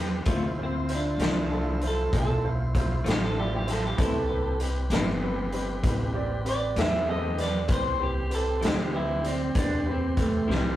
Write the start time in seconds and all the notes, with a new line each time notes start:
Already playing: E2 C4 G4 B4 C5
0.26 D2 D3 A3 C4 E4 F4 C5, kick, closed hi-hat
0.57 E4 F4 C5
0.63 C4
0.89 E4 F4 C5, closed hi-hat
0.95 D4
1.18 C2 A3 C4 E4 F4 C5, closed hi-hat
1.22 D3 D4, snare
1.50 E4 F4 A4
1.82 E4 F4 C5, closed hi-hat
1.87 A4
2.13 B1 E4 F4 C5, kick, closed hi-hat
2.18 A4
2.43 E4 F4 C5
2.75 E4 F4 C5, kick, closed hi-hat
3.04 A1 D3 A3 C4 E4 F4 C5, closed hi-hat
3.09 G4, snare
3.25 A4
3.36 E4 F4 G4 D5
3.57 G4
3.66 E4 F4 C5, closed hi-hat
3.70 A4, snare
3.87 G4
3.94 C2 A2 G3 C4 G4 B4, kick, closed hi-hat
3.98 E4 A4 B4
4.29 C4 G4 B4
4.60 C4 G4 B4, closed hi-hat
4.90 G1 A2 G3 C4 E4 G4 B4, snare, closed hi-hat
5.21 C4 G4 B4
5.52 C4 G4 B4, closed hi-hat
5.82 A1 C4 G4 B4, kick, closed hi-hat
6.13 C4 G4 D5
6.44 C4 G4 B4, closed hi-hat
6.49 D5
6.76 E2 A2 G3 C4 E4 G4 B4 E5, snare, closed hi-hat
7.07 C4 G4 A4 D#5
7.37 C4 G4 B4, closed hi-hat
7.41 D5, snare
7.67 C2 C4 G4 B4 C5, kick, closed hi-hat
7.73 C5
7.99 C4 G4 B4
8.03 G4
8.30 C4 G4 B4, closed hi-hat
8.35 A4
8.61 D2 A2 G3 C4 E4 G4 A4, closed hi-hat
8.65 G4, snare
8.92 C4 G4 B4
8.96 E4
9.23 C4 G4 D5, closed hi-hat
9.27 C4
9.54 E2 C4 D4 G4 B4, kick, closed hi-hat
9.85 C4 G4 B4
9.91 C4
10.17 A3 C4 G4 B4, kick, closed hi-hat
10.47 C2 A2 G3 C4 E4 G4 B4, snare